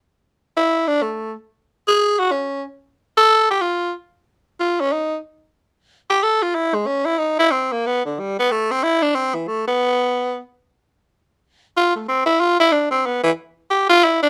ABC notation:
X:1
M:4/4
L:1/16
Q:"Swing" 1/4=184
K:Ephr
V:1 name="Tenor saxophone"
z6 E4 D2 A,4 | z6 _A4 ^F2 _D4 | z6 A4 G2 F4 | z8 F2 _D2 _E3 z |
z8 z2 G2 A2 F2 | E2 _A,2 _D2 E2 _E2 =E2 C2 _B,2 | B,2 D,2 G,2 B,2 A,2 C2 E2 D2 | C2 E,2 A,2 B,8- B,2 |
z16 | F2 A,2 C2 E2 F2 E2 D2 C2 | B,2 E,2 z4 G2 F2 E2 D2 |]